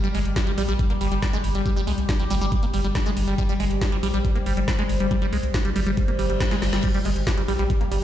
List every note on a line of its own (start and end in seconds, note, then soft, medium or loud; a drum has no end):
0.00 6.82 G3 medium
0.00 0.09 G3 loud
0.00 3.40 G4 medium
0.00 closed hi-hat medium
0.15 0.21 G1 medium
0.15 0.19 G#3 medium
0.15 open hi-hat loud
0.25 0.32 G1 medium
0.25 closed hi-hat medium
0.36 0.41 D4 medium
0.36 kick loud
0.36 snare loud
0.36 closed hi-hat medium
0.47 0.52 G3 medium
0.47 closed hi-hat medium
0.58 0.64 A#1 medium
0.58 0.63 G3 loud
0.58 open hi-hat loud
0.69 0.75 A#1 medium
0.69 0.73 G3 loud
0.69 closed hi-hat medium
0.79 kick loud
0.79 closed hi-hat medium
0.90 0.93 A#3 medium
0.90 closed hi-hat medium
1.01 1.08 G1 loud
1.01 1.08 G3 medium
1.01 open hi-hat loud
1.12 1.18 G1 medium
1.12 1.15 G3 medium
1.12 closed hi-hat medium
1.22 1.27 D4 medium
1.22 kick loud
1.22 snare loud
1.22 open hi-hat medium
1.33 1.38 G#3 loud
1.33 closed hi-hat soft
1.44 1.51 G1 loud
1.44 open hi-hat loud
1.55 1.62 G1 medium
1.55 1.62 G3 medium
1.55 closed hi-hat soft
1.66 1.70 G3 loud
1.66 kick loud
1.66 closed hi-hat medium
1.76 1.81 G3 loud
1.76 closed hi-hat medium
1.87 1.94 C2 medium
1.87 1.92 G#3 medium
1.87 open hi-hat medium
1.98 2.05 C2 medium
1.98 closed hi-hat medium
2.09 2.14 D4 medium
2.09 kick loud
2.09 snare loud
2.09 closed hi-hat medium
2.20 2.24 G3 medium
2.20 closed hi-hat medium
2.30 2.37 G1 medium
2.30 2.35 G3 loud
2.30 open hi-hat loud
2.41 2.48 G1 medium
2.41 2.46 G3 loud
2.41 closed hi-hat medium
2.52 kick loud
2.52 closed hi-hat loud
2.63 2.66 A#3 medium
2.63 closed hi-hat medium
2.74 2.80 G1 loud
2.74 2.81 G3 medium
2.74 open hi-hat loud
2.84 2.91 G1 medium
2.84 2.87 G3 medium
2.84 closed hi-hat soft
2.95 3.00 D4 medium
2.95 kick loud
2.95 snare loud
2.95 open hi-hat medium
3.06 3.11 G#3 loud
3.06 closed hi-hat medium
3.17 3.23 G1 medium
3.17 open hi-hat loud
3.28 3.34 G1 medium
3.28 3.35 G3 medium
3.28 closed hi-hat medium
3.38 3.43 G3 loud
3.38 6.86 C5 medium
3.38 kick loud
3.38 closed hi-hat loud
3.49 3.54 G3 loud
3.49 closed hi-hat medium
3.60 3.67 G1 medium
3.60 3.65 G#3 medium
3.60 open hi-hat loud
3.71 3.77 G1 medium
3.71 closed hi-hat medium
3.81 3.86 D4 medium
3.81 kick loud
3.81 snare loud
3.81 closed hi-hat medium
3.92 3.97 G3 medium
3.92 closed hi-hat medium
4.03 4.10 A#1 medium
4.03 4.08 G3 loud
4.03 open hi-hat loud
4.14 4.21 A#1 medium
4.14 4.19 G3 loud
4.14 closed hi-hat medium
4.25 kick loud
4.25 closed hi-hat loud
4.35 4.38 A#3 medium
4.35 closed hi-hat medium
4.46 4.53 G1 medium
4.46 4.53 G3 medium
4.46 open hi-hat loud
4.57 4.64 G1 medium
4.57 4.60 G3 medium
4.57 closed hi-hat medium
4.68 4.73 D4 medium
4.68 kick loud
4.68 snare loud
4.68 open hi-hat medium
4.79 4.83 G#3 loud
4.79 closed hi-hat medium
4.89 4.96 G1 medium
4.89 open hi-hat loud
5.00 5.07 G1 medium
5.00 5.07 G3 medium
5.00 closed hi-hat medium
5.11 5.16 G3 loud
5.11 kick loud
5.11 closed hi-hat loud
5.22 5.27 G3 loud
5.22 closed hi-hat medium
5.33 5.39 C2 medium
5.33 5.37 G#3 medium
5.33 open hi-hat loud
5.43 5.50 C2 medium
5.43 closed hi-hat medium
5.54 5.59 D4 medium
5.54 kick loud
5.54 snare loud
5.54 closed hi-hat medium
5.65 5.70 G3 medium
5.65 closed hi-hat medium
5.76 5.82 G1 medium
5.76 5.81 G3 loud
5.76 open hi-hat loud
5.87 5.93 G1 medium
5.87 5.91 G3 loud
5.87 closed hi-hat medium
5.97 kick loud
5.97 closed hi-hat loud
5.97 reverse cymbal medium
6.08 6.11 A#3 medium
6.08 closed hi-hat medium
6.19 6.26 G1 medium
6.19 6.26 G3 medium
6.19 open hi-hat loud
6.30 6.36 G1 medium
6.30 6.33 G3 medium
6.30 closed hi-hat medium
6.40 6.45 D4 medium
6.40 kick loud
6.40 snare loud
6.40 open hi-hat medium
6.51 6.56 G#3 loud
6.51 snare medium
6.51 closed hi-hat medium
6.62 6.69 G1 medium
6.62 snare medium
6.62 open hi-hat loud
6.73 6.80 G1 medium
6.73 6.80 G3 medium
6.73 snare medium
6.73 closed hi-hat medium
6.84 6.88 G3 loud
6.84 8.04 G3 medium
6.84 8.04 G4 medium
6.84 kick loud
6.84 closed hi-hat loud
6.84 crash medium
6.94 6.99 G3 loud
6.94 closed hi-hat medium
7.05 7.12 G1 medium
7.05 7.10 G#3 medium
7.05 open hi-hat loud
7.16 7.23 G1 medium
7.16 closed hi-hat medium
7.27 7.32 D4 medium
7.27 kick loud
7.27 snare loud
7.27 closed hi-hat loud
7.38 7.42 G3 medium
7.38 closed hi-hat medium
7.48 7.55 A#1 medium
7.48 7.53 G3 loud
7.48 open hi-hat loud
7.59 7.66 A#1 medium
7.59 7.64 G3 loud
7.59 closed hi-hat medium
7.70 kick loud
7.70 closed hi-hat loud
7.81 7.84 A#3 medium
7.81 closed hi-hat medium
7.92 7.98 G1 loud
7.92 7.99 G3 medium
7.92 open hi-hat loud